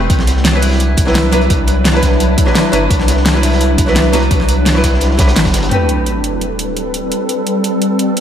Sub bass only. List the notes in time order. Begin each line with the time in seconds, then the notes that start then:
0.10 C2
0.97 C2
1.50 C2
2.73 G1
2.90 C2
3.78 C2
4.31 C2
5.36 G1
5.54 G1